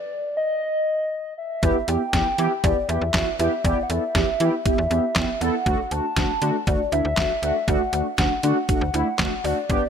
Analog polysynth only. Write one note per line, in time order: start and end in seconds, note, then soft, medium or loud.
1.63 1.77 B3 loud
1.63 1.77 E4 medium
1.63 1.77 G4 loud
1.88 2.02 B3 medium
1.88 2.02 E4 medium
1.88 2.02 G4 medium
2.13 2.27 B3 medium
2.13 2.27 E4 medium
2.13 2.27 G4 medium
2.38 2.52 B3 loud
2.38 2.52 E4 medium
2.38 2.52 G4 loud
2.64 2.78 B3 medium
2.64 2.78 E4 medium
2.64 2.78 G4 medium
2.89 3.03 B3 medium
2.89 3.03 E4 medium
2.89 3.03 G4 medium
3.14 3.28 B3 medium
3.14 3.28 E4 medium
3.14 3.28 F#4 medium
3.39 3.53 B3 loud
3.39 3.53 E4 medium
3.39 3.53 G4 loud
3.65 3.79 B3 loud
3.65 3.79 E4 medium
3.65 3.79 G4 loud
3.90 4.04 B3 medium
3.90 4.04 E4 medium
3.90 4.04 A4 medium
4.15 4.29 B3 medium
4.15 4.29 E4 medium
4.15 4.29 G4 medium
4.40 4.54 B3 loud
4.40 4.54 E4 medium
4.40 4.54 G4 loud
4.65 4.79 B3 medium
4.65 4.79 E4 medium
4.65 4.79 G4 medium
4.91 5.05 B3 medium
4.91 5.05 E4 medium
4.91 5.05 G4 medium
5.16 5.30 B3 medium
5.16 5.30 E4 medium
5.16 5.30 G4 medium
5.41 5.55 B3 loud
5.41 5.55 E4 medium
5.41 5.55 A4 loud
5.66 5.80 A3 loud
5.66 5.80 D4 medium
5.66 5.80 F#4 loud
5.92 6.06 A3 medium
5.92 6.06 D4 medium
5.92 6.06 F#4 medium
6.17 6.31 A3 medium
6.17 6.31 D4 medium
6.17 6.31 F#4 medium
6.42 6.56 A3 loud
6.42 6.56 D4 medium
6.42 6.56 F#4 loud
6.67 6.81 A3 medium
6.67 6.81 D4 medium
6.67 6.81 F#4 medium
6.92 7.06 A3 medium
6.92 7.06 D4 medium
6.92 7.06 E4 medium
7.17 7.31 A3 medium
7.17 7.31 D4 medium
7.17 7.31 F#4 medium
7.43 7.57 A3 loud
7.43 7.57 D4 medium
7.43 7.57 F#4 loud
7.68 7.82 A3 loud
7.68 7.82 D4 medium
7.68 7.82 F#4 loud
7.93 8.07 A3 medium
7.93 8.07 D4 medium
7.93 8.07 F#4 medium
8.18 8.32 A3 medium
8.18 8.32 D4 medium
8.18 8.32 F#4 medium
8.44 8.58 A3 loud
8.44 8.58 D4 loud
8.44 8.58 F#4 loud
8.69 8.83 A3 medium
8.69 8.83 D4 medium
8.69 8.83 F#4 medium
8.94 9.08 A3 medium
8.94 9.08 D4 medium
8.94 9.08 E4 loud
9.19 9.33 A3 medium
9.19 9.33 D4 medium
9.19 9.33 F#4 loud
9.44 9.58 A3 loud
9.44 9.58 D4 medium
9.44 9.58 F#4 loud
9.69 9.84 B3 loud
9.69 9.83 D4 medium
9.69 9.83 G4 loud